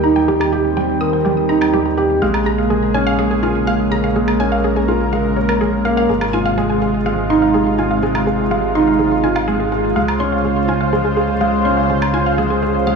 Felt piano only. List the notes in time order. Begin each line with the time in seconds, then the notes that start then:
Already playing: G3 D#4 G4 A#4
0.04 D#4
0.28 G3
0.52 G4
0.77 G3
1.01 A#4
1.25 G3
1.49 D#4
1.73 G3
1.97 G4
2.22 G#3
2.46 G#4
2.70 G#3
2.94 C#4
3.19 G#3
3.43 F4
3.67 G#3
3.91 G#4
4.16 G#3
4.40 C#4
4.64 G#3
4.88 F4
5.13 G#3
5.37 G#3
5.61 G#3
5.85 A#3
6.09 G#3
6.33 F4
6.57 G#3
6.81 G#4
7.06 G#3
7.30 D#4
7.54 G#3
7.78 F4
8.02 G#3
8.27 G#4
8.51 G#3
8.75 D#4
8.99 G#3
9.23 F4
9.48 G#3
9.72 G#4
9.96 G#3
10.20 C#4
10.44 G#3
10.68 F4
10.93 G#3
11.17 G#4
11.41 G#3
11.65 C#4
11.90 G#3
12.13 F4
12.38 G#3
12.62 G#4
12.86 G#3